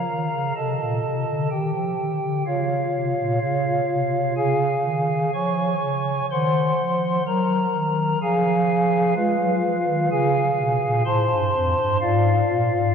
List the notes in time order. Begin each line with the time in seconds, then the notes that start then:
Already playing: A#4 F5 A#5
0.09 D#3
0.33 C#3
0.56 C3 A4 D#5 A5
0.80 A#2
1.04 C3
1.27 D3
1.51 D#3 G4 G5
1.73 F3
1.98 D#3
2.22 D3
2.46 C#3 F4 C#5 F5
2.94 C3
3.18 A#2
3.41 C#3 F4 C#5 F5
3.89 C3
4.37 C#3 G#4 F5 G#5
4.84 D#3
5.34 F3 C#5 G#5 C#6
5.82 C#3
6.31 D#3 C5 F#5 C6
6.80 F3
7.27 F#3 A#4 A#5
7.75 D#3
8.22 F3 G#4 F5 G#5
9.16 G#3 F4 B4 F5
9.40 F#3
9.64 F3
9.86 D#3
10.11 C#3 G#4 F5 G#5
10.58 B2
10.82 A#2
11.06 A2 C5 A5 C6
11.30 G2
11.54 F2
11.79 G2
12.01 G#2 F4 D5 F5
12.49 A#2
12.74 G#2